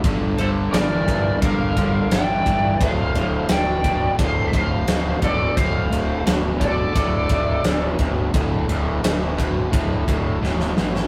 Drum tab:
RD |x-x-x-x-x-x-x-x-|x-x-x-x-x-x-x-x-|x-x-x-x-x-x-x-x-|x-x-x-x-x-x-----|
SD |----o-------o---|----o-------o---|----o-------o---|----o-------oooo|
BD |o-----o-o-o---o-|o-----o-o-o---o-|o-----o-o-o---o-|o-----o-o-o-----|